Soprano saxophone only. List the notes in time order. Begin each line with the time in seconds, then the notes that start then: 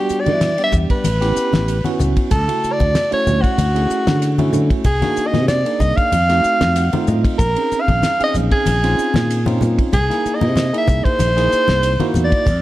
Already playing: G4
0.21 D5
0.64 E5
0.91 B4
2.32 A4
2.73 D5
3.14 C#5
3.42 F#4
4.86 G#4
5.27 D#5
5.49 D5
5.80 D#5
5.97 F5
7.39 A#4
7.81 F5
8.24 D#5
8.52 G#4
9.94 G#4
10.35 D#5
10.78 E5
11.05 C5
12.24 D5